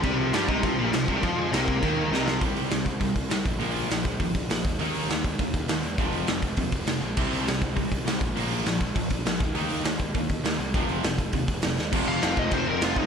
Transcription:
<<
  \new Staff \with { instrumentName = "Lead electric guitar" } { \time 4/4 \key c \minor \tempo 4 = 202 <g g'>8 <f f'>8 <f f'>8 <ees' ees''>8 <f f'>8. <g g'>16 <f f'>8. <g g'>16 | <f f'>8 <aes aes'>8 <bes bes'>2 <ees' ees''>8 <f f'>8 | r1 | r1 |
r1 | r1 | r1 | r1 |
r1 | r1 | r8 f''4 ees''8 c''8 bes'8 f'8 ees'8 | }
  \new Staff \with { instrumentName = "Distorted electric guitar" } { \clef bass \time 4/4 \key c \minor c4 g8 c4 bes,8 c8 c8 | f4 c4 ees4 c4 | <c g c'>4 <c g>8 r8 <c g>8 r8 <c g>8 r8 | <bes, f bes>4 <bes, f>8 r8 <bes, f>8 r8 <bes, f>8 r8 |
<ees bes ees'>4 <ees bes>8 r8 <ees bes>8 r8 <ees bes>8 r8 | <f, c f>4 <f, c>8 r8 <f, c>8 r8 <f, c>8 r8 | <c g c'>4 <c g>8 r8 <c g>8 r8 <c g>8 r8 | <bes, f bes>4 <bes, f>8 r8 <bes, f>8 r8 <bes, f>8 r8 |
<ees bes ees'>4 <ees bes>8 r8 <ees bes>8 r8 <ees bes>8 r8 | <f, c f>4 <f, c>8 r8 <f, c>8 r8 <f, c>8 r8 | <f, c f>4 <f, c f>4 <f, c f>4 <f, c f>4 | }
  \new Staff \with { instrumentName = "Distorted electric guitar" } { \clef bass \time 4/4 \key c \minor c4 g8 c4 bes,8 c8 c8 | f4 c4 ees4 c4 | <c g c'>4 <c g>8 r8 <c g>8 r8 <c g>8 r8 | <bes, f bes>4 <bes, f>8 r8 <bes, f>8 r8 <bes, f>8 r8 |
<ees bes ees'>4 <ees bes>8 r8 <ees bes>8 r8 <ees bes>8 r8 | <f, c f>4 <f, c>8 r8 <f, c>8 r8 <f, c>8 r8 | <c g c'>4 <c g>8 r8 <c g>8 r8 <c g>8 r8 | <bes, f bes>4 <bes, f>8 r8 <bes, f>8 r8 <bes, f>8 r8 |
<ees bes ees'>4 <ees bes>8 r8 <ees bes>8 r8 <ees bes>8 r8 | <f, c f>4 <f, c>8 r8 <f, c>8 r8 <f, c>8 r8 | <f, c f>4 <f, c f>4 <f, c f>4 <f, c f>4 | }
  \new Staff \with { instrumentName = "Overdriven electric guitar" } { \clef bass \time 4/4 \key c \minor c4 g8 c4 bes,8 c8 c8 | f4 c4 ees4 c4 | r1 | r1 |
r1 | r1 | r1 | r1 |
r1 | r1 | <f, c f>2~ <f, c f>8 <f, c f>8 <f, c f>4 | }
  \new Staff \with { instrumentName = "Picked electric bass" } { \clef bass \time 4/4 \key c \minor c,4 g,8 c,4 bes,,8 c,8 c,8 | f,4 c,4 ees,4 c,4 | c,8 c,8 c,4 c,8 c,8 c,8 bes,,8 | bes,,4 bes,,4 aes,,8 bes,,8 bes,,8 ees,8 |
ees,8 ees,8 ees,4 ees,8 ees,8 ees,8 e,8 | f,,4 f,,4 ees,8 f,,8 f,,8 bes,,8 | c,8 c,8 c,4 c,8 c,8 c,8 bes,,8 | bes,,4 bes,,4 aes,,8 bes,,8 bes,,8 ees,8 |
ees,8 ees,8 ees,4 ees,8 ees,8 ees,8 c,8 | f,,4 f,,4 ees,8 f,,8 f,,8 ees,8 | f,,8 f,,8 f,,8 f,,8 f,,8 f,,8 f,,8 f,,8 | }
  \new DrumStaff \with { instrumentName = "Drums" } \drummode { \time 4/4 <cymc bd>4 <cymc sn>8 bd8 <cymc bd>4 <cymc sn>8 bd8 | <cymc bd>4 <cymc sn>8 bd8 <cymc bd>4 sn8 sn8 | <hho bd>8 hho8 <hho sn>8 <hho bd>8 <hho bd>8 <hho bd>8 <hho sn>8 <hho bd>8 | hho8 hho8 <hho sn>8 <hho bd>8 <hho bd>8 <hho bd>8 <hho sn>8 <hho bd>8 |
hho8 hho8 <hho sn>8 <hho bd>8 <hho bd>8 <hho bd>8 <hho sn>8 hho8 | <hho bd>8 hho8 <hho sn>8 <hho bd>8 <hho bd>8 <hho bd>8 <hho sn>8 hho8 | <cymc bd>8 hho8 <hho sn>8 <hho bd>8 <hho bd>8 <hho bd>8 <hho sn>8 <hho bd>8 | hho8 hho8 <hho sn>8 <hho bd>8 <hho bd>8 <hho bd>8 <hho sn>8 <hho bd>8 |
hho8 hho8 <hho sn>8 <hho bd>8 <hho bd>8 <hho bd>8 <hho sn>8 hho8 | <hho bd>8 hho8 <hho sn>8 <hho bd>8 <hho bd>8 <hho bd>8 <hho sn>8 sn8 | <cymc bd>4 <cymc sn>8 bd8 <cymc bd>4 <cymc sn>8 bd8 | }
>>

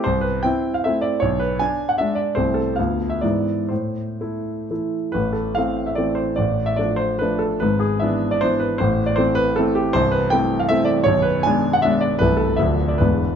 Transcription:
<<
  \new Staff \with { instrumentName = "Grand piano" } { \time 3/4 \key a \minor \tempo 4 = 151 c''8 b'8 g''8. f''16 e''8 d''8 | cis''8 b'8 gis''8. fis''16 e''8 d''8 | c''8 a'8 f''8. e''16 d''4 | c''2~ c''8 r8 |
b'8 a'8 f''8. e''16 d''8 c''8 | d''8. e''16 d''8 c''8 b'8 a'8 | b'8 gis'8 e''8. d''16 c''8 b'8 | c''8. d''16 c''8 b'8 a'8 g'8 |
c''8 b'8 g''8. f''16 e''8 d''8 | cis''8 b'8 gis''8. fis''16 e''8 d''8 | b'8 a'8 e''8. d''16 b'4 | }
  \new Staff \with { instrumentName = "Grand piano" } { \time 3/4 \key a \minor c,4 <c' e'>4 <a c' e'>4 | b,,4 d'4 <gis d'>4 | <c, a c' e'>4 <d, a b f'>4 <gis, e b e'>4 | a,4 <a e'>4 <e a e'>4 |
<a,, a,>4 <e a c'>4 <e a c'>4 | <a,, a,>4 <f a d'>4 <f a d'>4 | <gis,, gis,>4 <e b d'>4 <e b d'>4 | <a,, a,>4 <e a c'>4 <e a c'>4 |
<c,, c,>4 <e a c'>4 <e a c'>4 | <b,,, b,,>4 <gis b d'>4 <gis b d'>4 | <c,, c, e a e'>4 <d,, d, f a d'>4 <e,, e, e gis d'>4 | }
>>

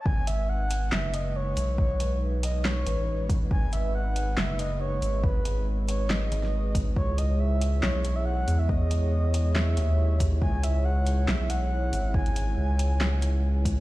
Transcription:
<<
  \new Staff \with { instrumentName = "Soft synth lead" } { \time 4/4 \key gis \minor \tempo 4 = 139 gis''8 e''8 fis''4 e''8 dis''8 cis''4 | cis''4 r8 dis''8 cis''4. r8 | gis''8 e''8 fis''4 e''8 dis''8 cis''4 | b'4 r8 cis''8 dis''4. r8 |
cis''8 dis''8 e''4 cis''8. e''16 fis''8. e''16 | dis''2 e''4. r8 | gis''8 e''8 fis''4 e''8 fis''4. | gis''2. r4 | }
  \new Staff \with { instrumentName = "Analog synth pad" } { \time 4/4 \key gis \minor << { <dis' b'>1~ | <dis' b'>1~ | <dis' b'>1~ | <dis' b'>1 |
<e' cis''>1~ | <e' cis''>1~ | <e' cis''>1~ | <e' cis''>1 | } \\ { gis1~ | gis1~ | gis1~ | gis1~ |
gis1~ | gis1~ | gis1~ | gis1 | } >> }
  \new Staff \with { instrumentName = "Sub bass" } { \clef bass \time 4/4 \key gis \minor gis,,2 fis,,4. b,,8~ | b,,2~ b,,8 a,,4. | gis,,2 fis,,4. gis,,8~ | gis,,2~ gis,,8 gis,,4. |
cis,2 b,,4. e,8~ | e,2~ e,8 dis,4. | cis,2 b,,4. gis,,8~ | gis,,4 cis,2. | }
  \new DrumStaff \with { instrumentName = "Drums" } \drummode { \time 4/4 bd8 hh8 r8 hh8 <hc sn>8 hh8 r8 hho8 | bd8 hh8 r8 hh8 <hc sn>8 hh8 r8 <hho bd>8 | bd8 hh8 r8 hh8 <hc sn>8 hh8 r8 hho8 | bd8 hh8 r8 hh8 <hc sn>8 hh16 sn16 r8 <hho bd>8 |
bd8 hh8 r8 hh8 <hc sn>8 hh8 r8 hho8 | bd8 hh8 r8 hh8 <hc sn>8 hh8 r8 <hho bd>8 | bd8 hh8 r8 hh8 <hc sn>8 hh8 r8 hho8 | bd16 hh16 hh8 r8 hh8 <hc sn>8 hh8 r8 <hho bd>8 | }
>>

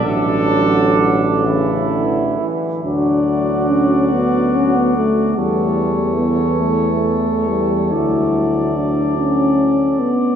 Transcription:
<<
  \new Staff \with { instrumentName = "Cornet" } { \time 6/8 \key d \major \tempo 4. = 47 a'4. r4. | d''2. | cis''2. | d''2. | }
  \new Staff \with { instrumentName = "Flugelhorn" } { \time 6/8 \key d \major d'4. e'4 r8 | fis'2. | a'2.~ | a'2~ a'8 r8 | }
  \new Staff \with { instrumentName = "Euphonium" } { \time 6/8 \key d \major fis4. e4 r8 | d'4 cis'8 b8 cis'16 b16 a8 | g4 b8 a4 g8 | e'4 d'8 cis'4 b8 | }
  \new Staff \with { instrumentName = "Trombone" } { \clef bass \time 6/8 \key d \major d4. cis8 d8 e8 | fis2. | e2. | fis2~ fis8 r8 | }
  \new Staff \with { instrumentName = "Tuba" } { \clef bass \time 6/8 \key d \major a,,2~ a,,8 r8 | d,2. | e,2. | d,2~ d,8 r8 | }
>>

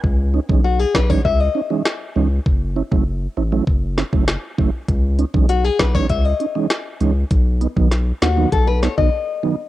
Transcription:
<<
  \new Staff \with { instrumentName = "Nylon-string guitar" } { \time 4/4 \key cis \minor \tempo 4 = 99 r4 fis'16 gis'16 b'16 cis''16 e''16 dis''4. r16 | r1 | r4 fis'16 gis'16 b'16 cis''16 e''16 dis''4. r16 | r4. fis'8 a'16 b'16 cis''16 dis''4~ dis''16 | }
  \new Staff \with { instrumentName = "Tonewheel organ" } { \time 4/4 \key cis \minor r8 <cis' dis'>16 <e gis cis' dis'>16 r8 <cis' dis'>16 <e gis cis' dis'>16 r8 <cis' dis'>16 <e gis cis' dis'>16 r8 <e gis cis' dis'>16 r16 | r8 <cis' e'>16 <fis a cis' e'>16 r8 <cis' e'>16 <fis a cis' e'>16 r8 <cis' e'>16 <fis a cis' e'>16 r8 <fis a cis' e'>16 r16 | r8 <cis' dis'>16 <e gis cis' dis'>16 r8 <cis' dis'>16 <e gis cis' dis'>16 r8 <cis' dis'>16 <e gis cis' dis'>16 r8 <e gis cis' dis'>16 r16 | r8 <b dis'>16 <dis fis b dis'>16 r8 <b dis'>16 <dis fis b dis'>16 r8 <b dis'>16 <dis fis b dis'>16 r8 <dis fis b dis'>16 r16 | }
  \new Staff \with { instrumentName = "Sub bass" } { \clef bass \time 4/4 \key cis \minor cis,8. b,,8. b,,8 cis,8 r4 cis,8 | fis,,8. fis,,8. a,,8 fis,,8. fis,,8 r16 fis,,16 r16 | cis,8. b,,8. b,,8 cis,8 r4 cis,8 | b,,8. b,,8. dis,8 b,,8. b,,16 r4 | }
  \new DrumStaff \with { instrumentName = "Drums" } \drummode { \time 4/4 bd8. bd16 r8 <bd sn>16 bd16 bd4 <ss sn>4 | bd8. bd16 r4 bd8 sn16 bd16 <ss sn>8 bd8 | <hh bd>8 hh16 bd16 hh8 <hh bd sn>16 bd16 <hh bd>8 hh8 <hh ss sn>8 hh8 | <hh bd>8 hh16 bd16 <hh sn>8 <hh sn>8 <hh bd>8 <hh sn>16 bd16 r4 | }
>>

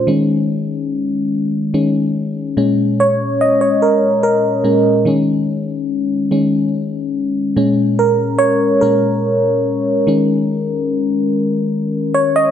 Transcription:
<<
  \new Staff \with { instrumentName = "FM electric piano" } { \time 6/8 \key ees \dorian \tempo 4. = 48 r2. | r8 des''8 ees''16 des''16 bes'8 bes'4 | r2. | r8 bes'8 des''8 bes'4.~ |
bes'4 r4. des''16 ees''16 | }
  \new Staff \with { instrumentName = "FM electric piano" } { \clef bass \time 6/8 \key ees \dorian <ees aes des'>8 r4. <ees aes des'>8 r8 | <bes, aes des'>4. r4 <bes, aes des'>8 | <ees aes des'>8 r4 <ees aes des'>8 r4 | <bes, aes des'>4. <bes, aes des'>8 r4 |
<ees aes des'>4. r4. | }
>>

